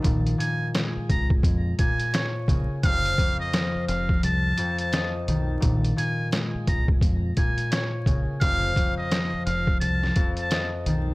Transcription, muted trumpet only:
X:1
M:4/4
L:1/16
Q:"Swing 16ths" 1/4=86
K:Bbm
V:1 name="Muted trumpet"
z2 a2 z2 b z3 a3 z3 | f3 e3 f2 =a3 a2 z3 | z2 a2 z2 b z3 a3 z3 | f3 e3 f2 =a3 a2 z3 |]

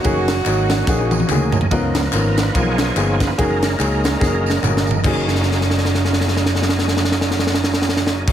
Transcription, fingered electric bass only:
X:1
M:4/4
L:1/8
Q:"Swing" 1/4=144
K:F#
V:1 name="Fingered electric bass" clef=bass
F,,,2 G,,,2 A,,,2 =D,,2 | C,,2 G,,,2 B,,,2 =G,,,2 | F,,,2 C,,2 F,,,2 =G,,,2 | F,,,8- |
F,,,8 |]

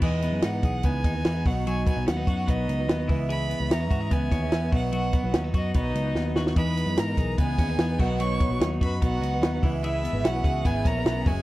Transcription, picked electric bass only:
X:1
M:4/4
L:1/16
Q:1/4=147
K:B
V:1 name="Picked electric bass" clef=bass
E,,3 F,, G,,2 B,,,2 C,,2 D,,2 E,,2 B,,,2- | B,,,3 B,,, D,,2 F,,2 B,,,2 C,,2 D,,2 C,,2- | C,,3 C,, E,,2 G,,2 C,,2 D,,2 E,,2 B,,,2- | B,,,3 B,,, D,,2 F,,2 B,,,2 C,,2 D,,2 D,,2 |
E,,3 F,, G,,2 B,,,2 C,,2 D,,2 E,,2 B,,,2- | B,,,3 B,,, D,,2 F,,2 B,,,2 C,,2 D,,2 C,,2- | C,,3 G,,, B,,,2 C,,2 G,,,2 A,,,2 B,,,2 F,,,2 |]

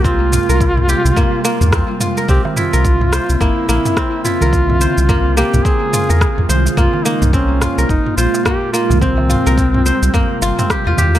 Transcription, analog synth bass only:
X:1
M:4/4
L:1/16
Q:"Swing 16ths" 1/4=107
K:none
V:1 name="Analog synth bass" clef=bass
C,,2 z C,,3 z C,, z3 E,, E,, z3 | C,, z2 C,,3 z C,, G,,, z _B,,, z4 C,,- | C,,2 z C,,3 z C,, z3 E,, z F,, C,, z | C,, z2 C,,3 z C,, G,,, z _B,,, z4 C,,- |
C,,2 z C,,3 z C,, z2 G,,, z2 E,, E,, z |]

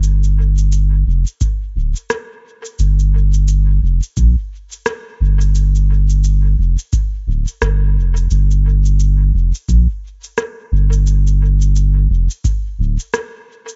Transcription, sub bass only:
X:1
M:4/4
L:1/8
Q:"Swing 16ths" 1/4=87
K:Gm
V:1 name="Sub bass" clef=bass
G,,,3 F,,, z D,,, z2 | G,,,3 F,,, B,,, z2 G,,,- | G,,,3 F,,, z D,,, G,,, F,,, | G,,,3 F,,, B,,, z2 G,,,- |
G,,,3 F,,, z D,,, z2 |]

